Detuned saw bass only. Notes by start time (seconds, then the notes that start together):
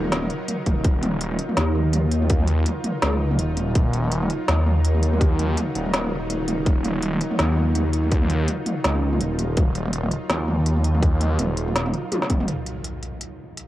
Already playing: D#1
0.67 D#1
0.85 D#1
1.57 D#2
3.03 C#2
3.39 D#1
3.76 D#1
4.48 D#2
5.75 D#1
6.48 D#1
6.66 D#1
7.39 D#2
8.85 C#2
9.21 D#1
9.57 D#1
10.30 D#2
11.39 D#1
12.30 D#1